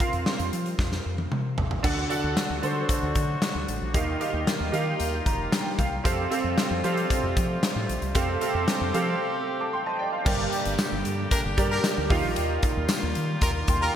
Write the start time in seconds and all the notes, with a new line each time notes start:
0.00 C4 F4 A#4 F5, kick, closed hi-hat
0.13 F2, closed hi-hat
0.26 snare
0.39 F2, closed hi-hat
0.53 F3, closed hi-hat
0.66 closed hi-hat
0.79 F2, kick, snare
0.92 snare
1.06 F2
1.18 high tom
1.32 mid tom
1.58 A1, floor tom
1.71 floor tom
1.83 D2 D3 F#3 A3 D4 F#4 A4 F#5, kick, crash
2.10 D4 F#4 A4 F#5, closed hi-hat
2.24 D2
2.37 snare, closed hi-hat
2.50 D2
2.63 D3 D4 F#4 A4 C5, closed hi-hat
2.89 kick, closed hi-hat
3.03 D2
3.15 D3, kick, closed hi-hat
3.42 snare, closed hi-hat
3.55 D2
3.68 A1, closed hi-hat
3.82 A#1
3.94 D#2 D#3 G3 A#3 D#4 F4 G4 A#4 F5, kick, closed hi-hat
4.20 D#4 G4 A#4 F5, closed hi-hat
4.34 D#2
4.47 snare, closed hi-hat
4.60 D#2
4.72 D#3 D#4 G4 A#4 F5, closed hi-hat
5.00 D#2, closed hi-hat
5.26 F1 A#5, kick, closed hi-hat
5.52 G5, snare, closed hi-hat
5.79 C2 F5, kick, closed hi-hat
6.04 F2 C3 A3 C4 F4 G4 A4 F5, kick, closed hi-hat
6.30 C4 G4 A4 F5, closed hi-hat
6.44 F2
6.58 snare, closed hi-hat
6.71 F2
6.84 F3 C4 G4 A4 F5, closed hi-hat
6.97 closed hi-hat
7.10 kick, closed hi-hat
7.23 F2
7.37 F3, kick, closed hi-hat
7.63 snare, closed hi-hat
7.76 A2
7.89 A#1, closed hi-hat
8.02 C2, closed hi-hat
8.14 F2 C4 G4 A4 F5, kick, closed hi-hat
8.41 C4 G4 A4 F5, closed hi-hat
8.55 F2
8.68 snare, closed hi-hat
8.81 F2
8.94 F3 C4 G4 A4 F5, closed hi-hat
9.60 A5 D6
9.73 G5 C6
9.86 D#5 A5
9.99 D5 G5
10.12 C5 F5
10.25 G1 G2 D3 G3 A#3 G4 A#4 D5, kick, crash
10.53 closed hi-hat
10.65 G1, closed hi-hat
10.78 snare, closed hi-hat, tambourine
10.92 G1
11.05 G2, closed hi-hat
11.31 D4 G4 A#4, kick, closed hi-hat
11.45 G1
11.57 G2 G4 A#4 D5, kick, closed hi-hat
11.71 D4 G4 A#4
11.84 snare, closed hi-hat, tambourine
11.98 D2
12.10 D#2 D#3 G3 D#4 F4 G4 A#4 F5, kick, open hi-hat
12.25 A#1
12.36 D#2, closed hi-hat
12.63 kick, closed hi-hat
12.77 D#2
12.88 snare, closed hi-hat, tambourine
13.03 D#2
13.15 D#3, closed hi-hat
13.41 D#2 F4 G4 A#4, kick, closed hi-hat
13.68 D#2 G5 C6, kick, closed hi-hat
13.81 F4 G4 A#4 F5 A#5